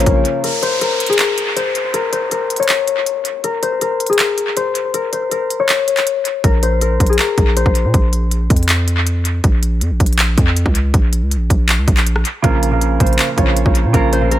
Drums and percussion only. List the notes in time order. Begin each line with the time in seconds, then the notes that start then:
0.00 closed hi-hat
0.06 kick, closed hi-hat
0.25 closed hi-hat
0.44 closed hi-hat
0.63 closed hi-hat
0.81 closed hi-hat
1.00 closed hi-hat
1.06 closed hi-hat
1.13 closed hi-hat
1.19 clap, closed hi-hat
1.38 closed hi-hat
1.57 closed hi-hat
1.75 closed hi-hat
1.94 closed hi-hat
2.13 closed hi-hat
2.31 closed hi-hat
2.50 closed hi-hat
2.56 closed hi-hat
2.63 closed hi-hat
2.69 clap, closed hi-hat
2.88 closed hi-hat
3.06 closed hi-hat
3.25 closed hi-hat
3.44 closed hi-hat
3.63 closed hi-hat
3.81 closed hi-hat
4.00 closed hi-hat
4.07 closed hi-hat
4.13 closed hi-hat
4.19 clap, closed hi-hat
4.38 closed hi-hat
4.57 closed hi-hat
4.75 closed hi-hat
4.94 closed hi-hat
5.13 closed hi-hat
5.31 closed hi-hat
5.50 closed hi-hat
5.69 clap, closed hi-hat
5.88 closed hi-hat
5.97 clap, closed hi-hat
6.07 closed hi-hat
6.25 closed hi-hat
6.44 kick, closed hi-hat
6.63 closed hi-hat
6.81 closed hi-hat
7.00 kick, closed hi-hat
7.07 closed hi-hat
7.13 closed hi-hat
7.19 clap, closed hi-hat
7.38 kick, closed hi-hat
7.57 closed hi-hat
7.66 kick
7.75 closed hi-hat
7.94 kick, closed hi-hat
8.13 closed hi-hat
8.31 closed hi-hat
8.50 kick, closed hi-hat
8.56 closed hi-hat
8.63 closed hi-hat
8.69 clap, closed hi-hat
8.88 closed hi-hat
9.07 closed hi-hat
9.25 closed hi-hat
9.44 kick, closed hi-hat
9.63 closed hi-hat
9.81 closed hi-hat
10.00 kick, closed hi-hat
10.06 closed hi-hat
10.13 closed hi-hat
10.19 clap, closed hi-hat
10.38 kick, closed hi-hat
10.57 closed hi-hat
10.66 kick
10.75 closed hi-hat
10.94 kick, closed hi-hat
11.13 closed hi-hat
11.31 closed hi-hat
11.50 kick, closed hi-hat
11.69 clap, closed hi-hat
11.88 kick, closed hi-hat
11.97 clap, closed hi-hat
12.07 closed hi-hat
12.16 cross-stick
12.25 closed hi-hat
12.44 kick, closed hi-hat
12.63 closed hi-hat
12.81 closed hi-hat
13.00 kick, closed hi-hat
13.07 closed hi-hat
13.13 closed hi-hat
13.19 clap, closed hi-hat
13.38 kick, closed hi-hat
13.57 closed hi-hat
13.66 kick
13.75 closed hi-hat
13.94 kick, closed hi-hat
14.13 closed hi-hat
14.31 closed hi-hat